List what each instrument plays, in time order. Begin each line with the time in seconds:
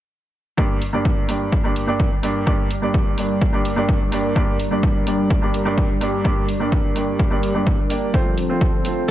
0.57 felt piano G2 A#3 D4 G4 D5, analog synth pad G3 D4 A#4 D5, kick
0.82 open hi-hat
0.93 felt piano G2 A#3 D4 G4 D5
1.05 kick
1.28 felt piano G2 A#3 D4 G4 D5, open hi-hat
1.52 kick
1.64 felt piano G2 A#3 D4 G4 D5
1.76 open hi-hat
1.87 felt piano G2 A#3 D4 G4 D5
2.00 kick
2.23 felt piano G2 A#3 D4 G4 D5, open hi-hat
2.46 felt piano G2 A#3 D4 G4 D5, kick
2.71 open hi-hat
2.82 felt piano G2 A#3 D4 G4 D5
2.94 kick
3.17 felt piano G2 A#3 D4 G4 D5, open hi-hat
3.41 kick
3.53 felt piano G2 A#3 D4 G4 D5
3.65 open hi-hat
3.76 felt piano G2 A#3 D4 G4 D5
3.89 kick
4.12 felt piano G2 A#3 D4 G4 D5, open hi-hat
4.35 felt piano G2 A#3 D4 G4 D5, kick
4.60 open hi-hat
4.71 felt piano G2 A#3 D4 G4 D5
4.83 kick
5.06 felt piano G2 A#3 D4 G4 D5, open hi-hat
5.30 kick
5.42 felt piano G2 A#3 D4 G4 D5
5.54 open hi-hat
5.65 felt piano G2 A#3 D4 G4 D5
5.78 kick
6.01 felt piano G2 A#3 D4 G4 D5, open hi-hat
6.24 felt piano G2 A#3 D4 G4 D5, kick
6.48 open hi-hat
6.60 felt piano G2 A#3 D4 G4 D5
6.72 kick
6.95 felt piano G2 A#3 D4 G4 D5, open hi-hat
7.19 kick
7.31 felt piano G2 A#3 D4 G4 D5
7.43 open hi-hat
7.54 felt piano G2 A#3 D4 G4 D5
7.67 kick
7.90 felt piano A#3 D4 G4 D5, open hi-hat
8.13 analog synth pad F3 C4 A4 C5, felt piano A3 C4 F4 C5, kick
8.38 open hi-hat
8.49 felt piano A3 C4 F4 C5
8.61 kick
8.84 felt piano A3 C4 F4 C5, open hi-hat